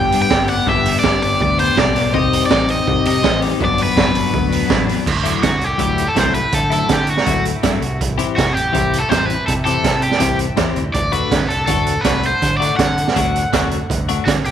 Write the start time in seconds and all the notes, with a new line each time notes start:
Already playing: D3 G3 B3 D4 G4 G5
0.11 G2 B3 D4 G4, open hi-hat
0.22 G5
0.30 G1 G3 B3 D4 G4, kick, snare
0.48 B3 D4 G4 F#5, open hi-hat
0.66 G1 G3 B3 D4 G4 E5, kick
0.83 B3 D4 G4, open hi-hat
0.99 G3 D5
1.04 G1 B3 D4 G4, kick, snare
1.22 G1 D5, open hi-hat
1.41 D2 D5, kick
1.58 B3 D4 G4 C5, open hi-hat
1.75 B1 G3 B3 D4 G4 D5, kick, snare
1.95 B3 D4 G4, snare, open hi-hat
2.12 C2 D#3 C4 D#4 G4 D#5, kick
2.30 D#4 G4, open hi-hat
2.46 C4 D5
2.51 A1 D#4 G4, kick, snare
2.69 D#5, open hi-hat
2.87 C2, kick
3.05 C3 D#4 G4 D#5, open hi-hat
3.22 A1 C4 D#4 G4, kick, snare
3.40 D#4 G4, snare, open hi-hat
3.59 G1 D3 F#3 B3 D4 F#4, kick
3.65 D5
3.78 B3 D4, open hi-hat
3.83 B4
3.96 G1 F#3 B3 D4, kick, snare
4.15 G1, open hi-hat
4.34 D2, kick
4.50 B3 D4, open hi-hat
4.66 A1 F#3 B3 D4, kick, snare
4.87 B3 D4, snare, open hi-hat
5.06 D2 D3 E3 A3 E4, kick, crash
5.23 F#3 A3 E4, closed hi-hat
5.43 D3 F#4, kick, snare, closed hi-hat
5.59 C2, closed hi-hat
5.64 G4
5.78 D2 F#3 A3 E4, kick, closed hi-hat
5.98 closed hi-hat
6.08 A4
6.15 C2 F#3 A3 E4 C5, kick, snare, closed hi-hat
6.34 B4, closed hi-hat
6.52 D3 A4, kick, closed hi-hat
6.70 F#3 A3 E4 A4, closed hi-hat
6.89 D3, kick, snare, closed hi-hat
6.93 G4
7.07 F#4, closed hi-hat
7.17 snare
7.26 D2 F#3 A3 E4, kick, closed hi-hat
7.45 closed hi-hat
7.63 G2 F#3 A3 E4, kick, snare, closed hi-hat
7.81 C2 C3 E3 G3, closed hi-hat
8.01 kick, closed hi-hat
8.18 E3 C4 E4 G4, closed hi-hat
8.36 C3 F#4, kick, snare, closed hi-hat
8.53 A1 G4
8.57 closed hi-hat
8.73 C2 E3 C4 E4 G4, kick, closed hi-hat
8.93 closed hi-hat
9.00 A4
9.09 A1 E3 C4 E4 G4 C5, kick, snare, closed hi-hat
9.26 B4
9.30 closed hi-hat
9.47 C3 A4, kick, closed hi-hat
9.65 E3 C4 E4 G4 A4, closed hi-hat
9.84 C3, kick, snare, closed hi-hat
10.02 G4, closed hi-hat
10.11 snare
10.19 C2 E3 C4 E4 G4, kick, closed hi-hat
10.39 closed hi-hat
10.57 E2 E3 C4 E4 G4, kick, snare, closed hi-hat
10.76 D2, closed hi-hat
10.94 D2 D3 A3 D5 F#5, kick, closed hi-hat
11.12 A3 D4 F#4 B4, closed hi-hat
11.31 D3, kick, snare, closed hi-hat
11.48 C2 A4, closed hi-hat
11.66 D2 A3 D4 F#4 A4, kick, closed hi-hat
11.86 closed hi-hat
12.01 C2 A3 F#4 B4, kick, snare, closed hi-hat
12.05 D4
12.23 C5, closed hi-hat
12.42 D3, kick, closed hi-hat
12.57 D4 F#4 D5
12.62 A3, closed hi-hat
12.77 D3 F#5, kick, snare, closed hi-hat
12.98 closed hi-hat
13.08 snare
13.16 D2 A3 D4 F#4, kick, closed hi-hat
13.36 closed hi-hat
13.53 D2 A3 D4 F#4, kick, snare, closed hi-hat
13.71 closed hi-hat
13.90 D2 B3, kick, closed hi-hat
14.09 A3 D4 F#4, closed hi-hat
14.25 D3 F#4, kick, snare, closed hi-hat
14.44 C2 G4, closed hi-hat